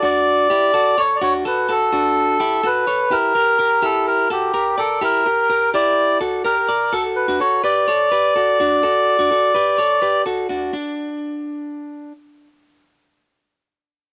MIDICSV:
0, 0, Header, 1, 3, 480
1, 0, Start_track
1, 0, Key_signature, 2, "major"
1, 0, Tempo, 475813
1, 1225, Time_signature, 4, 2, 24, 8
1, 14246, End_track
2, 0, Start_track
2, 0, Title_t, "Melodica"
2, 0, Program_c, 0, 22
2, 42, Note_on_c, 0, 74, 127
2, 1005, Note_on_c, 0, 73, 97
2, 1021, Note_off_c, 0, 74, 0
2, 1168, Note_on_c, 0, 74, 72
2, 1180, Note_off_c, 0, 73, 0
2, 1226, Note_off_c, 0, 74, 0
2, 1241, Note_on_c, 0, 73, 105
2, 1345, Note_off_c, 0, 73, 0
2, 1486, Note_on_c, 0, 71, 85
2, 1722, Note_off_c, 0, 71, 0
2, 1726, Note_on_c, 0, 69, 100
2, 2685, Note_on_c, 0, 71, 99
2, 2703, Note_off_c, 0, 69, 0
2, 3149, Note_on_c, 0, 70, 111
2, 3168, Note_off_c, 0, 71, 0
2, 3880, Note_on_c, 0, 69, 95
2, 3887, Note_off_c, 0, 70, 0
2, 4095, Note_off_c, 0, 69, 0
2, 4109, Note_on_c, 0, 70, 95
2, 4329, Note_off_c, 0, 70, 0
2, 4361, Note_on_c, 0, 67, 83
2, 4829, Note_on_c, 0, 69, 93
2, 4845, Note_off_c, 0, 67, 0
2, 5072, Note_off_c, 0, 69, 0
2, 5084, Note_on_c, 0, 70, 100
2, 5753, Note_off_c, 0, 70, 0
2, 5792, Note_on_c, 0, 74, 103
2, 6234, Note_off_c, 0, 74, 0
2, 6504, Note_on_c, 0, 70, 97
2, 6987, Note_on_c, 0, 69, 96
2, 6998, Note_off_c, 0, 70, 0
2, 7094, Note_off_c, 0, 69, 0
2, 7221, Note_on_c, 0, 71, 93
2, 7469, Note_off_c, 0, 71, 0
2, 7471, Note_on_c, 0, 73, 95
2, 7690, Note_off_c, 0, 73, 0
2, 7707, Note_on_c, 0, 74, 116
2, 10308, Note_off_c, 0, 74, 0
2, 14246, End_track
3, 0, Start_track
3, 0, Title_t, "Clean electric guitar"
3, 0, Program_c, 1, 27
3, 27, Note_on_c, 1, 66, 92
3, 33, Note_on_c, 1, 62, 72
3, 477, Note_off_c, 1, 66, 0
3, 480, Note_off_c, 1, 62, 0
3, 504, Note_on_c, 1, 67, 82
3, 513, Note_on_c, 1, 64, 61
3, 739, Note_off_c, 1, 64, 0
3, 743, Note_on_c, 1, 69, 89
3, 744, Note_off_c, 1, 67, 0
3, 752, Note_on_c, 1, 66, 71
3, 981, Note_off_c, 1, 69, 0
3, 985, Note_on_c, 1, 73, 72
3, 988, Note_off_c, 1, 66, 0
3, 994, Note_on_c, 1, 69, 62
3, 1222, Note_off_c, 1, 69, 0
3, 1225, Note_off_c, 1, 73, 0
3, 1226, Note_on_c, 1, 66, 101
3, 1235, Note_on_c, 1, 62, 72
3, 1460, Note_off_c, 1, 66, 0
3, 1466, Note_on_c, 1, 69, 72
3, 1470, Note_off_c, 1, 62, 0
3, 1472, Note_on_c, 1, 66, 61
3, 1692, Note_off_c, 1, 69, 0
3, 1701, Note_off_c, 1, 66, 0
3, 1705, Note_on_c, 1, 69, 71
3, 1713, Note_on_c, 1, 66, 57
3, 1932, Note_off_c, 1, 66, 0
3, 1944, Note_off_c, 1, 69, 0
3, 1944, Note_on_c, 1, 66, 87
3, 1953, Note_on_c, 1, 62, 69
3, 2395, Note_off_c, 1, 66, 0
3, 2400, Note_off_c, 1, 62, 0
3, 2422, Note_on_c, 1, 67, 82
3, 2428, Note_on_c, 1, 64, 62
3, 2655, Note_off_c, 1, 64, 0
3, 2659, Note_on_c, 1, 69, 89
3, 2662, Note_off_c, 1, 67, 0
3, 2668, Note_on_c, 1, 66, 67
3, 2892, Note_off_c, 1, 69, 0
3, 2897, Note_on_c, 1, 73, 75
3, 2900, Note_off_c, 1, 66, 0
3, 2904, Note_on_c, 1, 69, 60
3, 3135, Note_off_c, 1, 69, 0
3, 3139, Note_on_c, 1, 67, 93
3, 3140, Note_off_c, 1, 73, 0
3, 3148, Note_on_c, 1, 64, 74
3, 3374, Note_off_c, 1, 67, 0
3, 3376, Note_off_c, 1, 64, 0
3, 3380, Note_on_c, 1, 70, 80
3, 3386, Note_on_c, 1, 67, 65
3, 3608, Note_off_c, 1, 70, 0
3, 3615, Note_off_c, 1, 67, 0
3, 3620, Note_on_c, 1, 70, 75
3, 3627, Note_on_c, 1, 67, 60
3, 3845, Note_off_c, 1, 67, 0
3, 3857, Note_on_c, 1, 67, 100
3, 3859, Note_off_c, 1, 70, 0
3, 3863, Note_on_c, 1, 64, 74
3, 4311, Note_off_c, 1, 67, 0
3, 4314, Note_off_c, 1, 64, 0
3, 4340, Note_on_c, 1, 69, 80
3, 4348, Note_on_c, 1, 66, 64
3, 4573, Note_off_c, 1, 69, 0
3, 4577, Note_on_c, 1, 70, 87
3, 4582, Note_off_c, 1, 66, 0
3, 4586, Note_on_c, 1, 67, 65
3, 4815, Note_off_c, 1, 70, 0
3, 4819, Note_on_c, 1, 74, 77
3, 4823, Note_off_c, 1, 67, 0
3, 4827, Note_on_c, 1, 70, 58
3, 5054, Note_off_c, 1, 70, 0
3, 5058, Note_on_c, 1, 67, 96
3, 5060, Note_off_c, 1, 74, 0
3, 5068, Note_on_c, 1, 64, 72
3, 5300, Note_off_c, 1, 67, 0
3, 5305, Note_off_c, 1, 64, 0
3, 5305, Note_on_c, 1, 70, 73
3, 5314, Note_on_c, 1, 67, 57
3, 5533, Note_off_c, 1, 70, 0
3, 5541, Note_off_c, 1, 67, 0
3, 5545, Note_on_c, 1, 70, 78
3, 5553, Note_on_c, 1, 67, 57
3, 5778, Note_off_c, 1, 67, 0
3, 5783, Note_off_c, 1, 70, 0
3, 5790, Note_on_c, 1, 67, 90
3, 5797, Note_on_c, 1, 64, 75
3, 6238, Note_off_c, 1, 67, 0
3, 6241, Note_off_c, 1, 64, 0
3, 6262, Note_on_c, 1, 69, 79
3, 6270, Note_on_c, 1, 66, 64
3, 6498, Note_off_c, 1, 69, 0
3, 6502, Note_on_c, 1, 70, 84
3, 6506, Note_off_c, 1, 66, 0
3, 6511, Note_on_c, 1, 67, 67
3, 6742, Note_off_c, 1, 70, 0
3, 6744, Note_on_c, 1, 74, 76
3, 6747, Note_off_c, 1, 67, 0
3, 6753, Note_on_c, 1, 70, 62
3, 6982, Note_off_c, 1, 70, 0
3, 6983, Note_off_c, 1, 74, 0
3, 6986, Note_on_c, 1, 69, 102
3, 6995, Note_on_c, 1, 66, 74
3, 7323, Note_off_c, 1, 69, 0
3, 7327, Note_off_c, 1, 66, 0
3, 7346, Note_on_c, 1, 66, 84
3, 7355, Note_on_c, 1, 62, 62
3, 7464, Note_off_c, 1, 66, 0
3, 7466, Note_on_c, 1, 69, 70
3, 7469, Note_off_c, 1, 62, 0
3, 7475, Note_on_c, 1, 66, 56
3, 7700, Note_off_c, 1, 69, 0
3, 7704, Note_on_c, 1, 71, 89
3, 7708, Note_off_c, 1, 66, 0
3, 7712, Note_on_c, 1, 67, 62
3, 7944, Note_off_c, 1, 71, 0
3, 7946, Note_on_c, 1, 73, 81
3, 7948, Note_off_c, 1, 67, 0
3, 7955, Note_on_c, 1, 69, 67
3, 8181, Note_off_c, 1, 69, 0
3, 8185, Note_off_c, 1, 73, 0
3, 8186, Note_on_c, 1, 71, 85
3, 8195, Note_on_c, 1, 67, 57
3, 8424, Note_off_c, 1, 71, 0
3, 8428, Note_on_c, 1, 69, 87
3, 8430, Note_off_c, 1, 67, 0
3, 8436, Note_on_c, 1, 66, 64
3, 8661, Note_off_c, 1, 66, 0
3, 8666, Note_off_c, 1, 69, 0
3, 8673, Note_on_c, 1, 66, 75
3, 8681, Note_on_c, 1, 62, 60
3, 8906, Note_off_c, 1, 66, 0
3, 8909, Note_on_c, 1, 69, 96
3, 8912, Note_off_c, 1, 62, 0
3, 8918, Note_on_c, 1, 66, 77
3, 9245, Note_off_c, 1, 69, 0
3, 9250, Note_off_c, 1, 66, 0
3, 9269, Note_on_c, 1, 66, 72
3, 9279, Note_on_c, 1, 62, 61
3, 9387, Note_off_c, 1, 66, 0
3, 9389, Note_on_c, 1, 69, 71
3, 9392, Note_off_c, 1, 62, 0
3, 9398, Note_on_c, 1, 66, 59
3, 9624, Note_off_c, 1, 69, 0
3, 9628, Note_on_c, 1, 71, 82
3, 9632, Note_off_c, 1, 66, 0
3, 9639, Note_on_c, 1, 67, 67
3, 9867, Note_off_c, 1, 71, 0
3, 9868, Note_on_c, 1, 73, 77
3, 9872, Note_off_c, 1, 67, 0
3, 9876, Note_on_c, 1, 69, 69
3, 10102, Note_off_c, 1, 69, 0
3, 10106, Note_on_c, 1, 71, 75
3, 10107, Note_off_c, 1, 73, 0
3, 10112, Note_on_c, 1, 67, 64
3, 10344, Note_off_c, 1, 71, 0
3, 10348, Note_on_c, 1, 69, 81
3, 10349, Note_off_c, 1, 67, 0
3, 10355, Note_on_c, 1, 66, 67
3, 10573, Note_off_c, 1, 66, 0
3, 10581, Note_off_c, 1, 69, 0
3, 10585, Note_on_c, 1, 66, 71
3, 10594, Note_on_c, 1, 62, 54
3, 10813, Note_off_c, 1, 62, 0
3, 10825, Note_on_c, 1, 62, 72
3, 10826, Note_off_c, 1, 66, 0
3, 12228, Note_off_c, 1, 62, 0
3, 14246, End_track
0, 0, End_of_file